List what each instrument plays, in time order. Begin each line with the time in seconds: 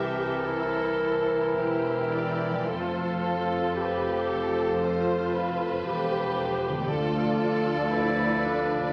Already playing: double bass section C2, cello section C2, harp C3 A#3, french horn section E3 A#4, bassoon E3, viola section G4, violin section A4 E5, clarinet A#4
0.46 viola section E4, violin section C5
1.02 viola section E4
1.57 double bass section E1, cello section E2, violin section G4 C5
2.13 violin section D5
2.50 harp F3
2.55 harp A3
2.59 harp F4
2.64 violin section A4 C5, harp C5
2.68 double bass section F1, cello section F2, french horn section F3 A4, bassoon F3, viola section F4, clarinet A4
3.20 violin section A4
3.75 viola section G4, violin section B4 C5
4.27 violin section A4
4.79 viola section F4, violin section C5
5.31 violin section B4
5.83 double bass section E1, cello section E2, viola section G4
6.69 harp D3
6.73 harp A3
6.78 harp F4
6.82 harp D5
6.87 cello section D2, double bass section D2, bassoon F3, french horn section F3 A4, viola section F4, clarinet A4, violin section A4 D5
7.39 violin section A4
7.91 viola section E4, violin section B4
8.44 viola section D4
8.77 harp D3
8.82 harp A#3
8.86 harp F4